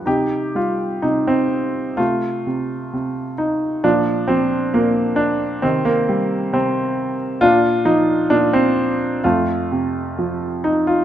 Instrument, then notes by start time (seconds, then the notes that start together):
grand piano
0.06 C3 D#4 G4
0.55 G3 F4
1.02 C3 D#4
1.27 C4
1.97 C3 A3 F4
2.47 C3
2.93 C3
3.38 D#4
3.84 A#2 F3 D4
4.28 F3 C4
4.74 A#2 A#3
5.16 D4
5.62 C3 D#3 C4
5.85 A#3
6.09 G3
6.53 C3 C4
7.41 A#2 D4 F4
7.85 F3 D#4
8.30 A#2 D4
8.53 C4
9.24 F2 A3 F4
9.72 C3
10.19 F3
10.64 D#4
10.87 F4